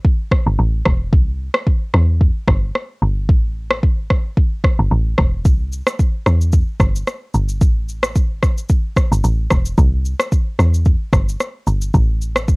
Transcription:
0.05 log drum bass E1, kick
0.31 kick, cross-stick
0.46 log drum bass G1
0.59 log drum bass A1
0.85 log drum bass E1, kick, cross-stick
1.13 log drum bass C2, kick
1.54 cross-stick
1.67 kick
1.94 log drum bass E2, cross-stick
2.21 kick
2.48 log drum bass G1, kick, cross-stick
2.75 cross-stick
3.02 log drum bass G1
3.29 log drum bass A1, kick
3.71 cross-stick
3.83 kick
4.10 log drum bass G1, kick, cross-stick
4.37 log drum bass E1, kick
4.64 kick, cross-stick
4.79 log drum bass G1
4.91 log drum bass A1
5.18 log drum bass E1, kick, cross-stick
5.45 log drum bass C2, kick, shaker
5.73 shaker
5.87 cross-stick, shaker
5.99 kick, shaker
6.26 log drum bass E2, cross-stick, shaker
6.41 shaker
6.53 kick, shaker
6.80 log drum bass G1, kick, cross-stick, shaker
6.96 shaker
7.08 cross-stick, shaker
7.34 log drum bass G1, shaker
7.49 shaker
7.61 log drum bass A1, kick, shaker
7.89 shaker
8.03 cross-stick, shaker
8.15 kick, shaker
8.42 log drum bass G1, kick, cross-stick, shaker
8.58 shaker
8.69 log drum bass E1, kick, shaker
8.96 kick, cross-stick, shaker
9.12 log drum bass G1, shaker
9.24 log drum bass A1, shaker
9.50 log drum bass E1, kick, cross-stick, shaker
9.65 shaker
9.78 log drum bass C2, kick, shaker
10.05 shaker
10.19 cross-stick, shaker
10.32 kick, shaker
10.59 log drum bass E2, cross-stick, shaker
10.74 shaker
10.85 kick, shaker
11.13 log drum bass G1, kick, cross-stick, shaker
11.29 shaker
11.40 cross-stick, shaker
11.67 log drum bass G1, shaker
11.82 shaker
11.94 log drum bass A1, kick, shaker
12.21 shaker
12.36 cross-stick, shaker
12.48 kick, shaker

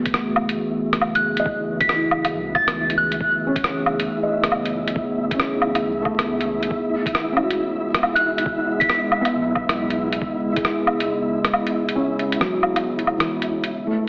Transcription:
Already playing: sub bass F#1, ambient pad E3 A3 B3 F#4 G#4, felt piano B3, synth texture E4 E5
0.06 kick, closed hi-hat
0.14 cross-stick
0.36 low woodblock
0.49 closed hi-hat
0.93 sub bass F#1, cross-stick, closed hi-hat
1.01 low woodblock
1.15 synth bell F#6, closed hi-hat
1.37 felt piano D#5, closed hi-hat
1.46 sub bass F#1, kick
1.80 synth bell B6, kick, closed hi-hat
1.89 synth bell B6, cross-stick
1.95 felt piano E4
2.11 low woodblock
2.25 closed hi-hat, low woodblock
2.33 sub bass C#2
2.55 synth bell A6, kick, low woodblock
2.68 cross-stick, closed hi-hat
2.90 closed hi-hat
2.98 synth bell F#6
3.12 closed hi-hat
3.21 sub bass F#1, kick
3.47 felt piano C#4
3.56 kick, closed hi-hat
3.64 cross-stick
3.86 low woodblock
4.00 closed hi-hat
4.23 felt piano D#5
4.43 sub bass F#1, cross-stick, closed hi-hat
4.52 low woodblock
4.65 closed hi-hat
4.88 closed hi-hat
4.96 sub bass F#1, kick
5.31 felt piano C#4, kick, closed hi-hat
5.40 cross-stick
5.62 low woodblock
5.75 closed hi-hat, low woodblock
5.83 sub bass C#2
6.02 felt piano A3, kick, low woodblock
6.19 cross-stick, closed hi-hat
6.41 closed hi-hat
6.63 closed hi-hat
6.71 sub bass E1, ambient pad C#3, kick
6.77 ambient pad G#3
7.06 kick, closed hi-hat
7.15 cross-stick
7.33 felt piano C#4
7.37 ambient pad E4, felt piano E4, low woodblock
7.43 felt piano F#4
7.50 closed hi-hat
7.94 sub bass E1, cross-stick, closed hi-hat
8.03 low woodblock
8.15 synth bell F#6, closed hi-hat
8.38 closed hi-hat
8.46 sub bass E1, kick
8.80 synth bell B6, kick, closed hi-hat
8.89 synth bell B6, cross-stick
9.12 low woodblock
9.21 felt piano B3
9.25 closed hi-hat, low woodblock
9.34 sub bass B1
9.55 kick, low woodblock
9.69 cross-stick, closed hi-hat
9.90 closed hi-hat
10.12 closed hi-hat
10.22 sub bass E1, kick
10.52 felt piano E4
10.56 felt piano G#4, kick, closed hi-hat
10.65 cross-stick
10.87 low woodblock
11.00 closed hi-hat
11.44 sub bass E1, cross-stick, closed hi-hat
11.53 low woodblock
11.67 closed hi-hat
11.89 closed hi-hat
11.95 felt piano C#4
12.19 closed hi-hat
12.32 closed hi-hat
12.40 felt piano F#3, cross-stick
12.63 low woodblock
12.76 closed hi-hat, low woodblock
12.99 closed hi-hat
13.07 low woodblock
13.16 felt piano E3, cross-stick, closed hi-hat
13.42 closed hi-hat
13.64 closed hi-hat
13.71 ambient pad F#3, synth texture B3 B4
13.79 ambient pad C#4
13.87 felt piano A3
14.04 ambient pad G#4

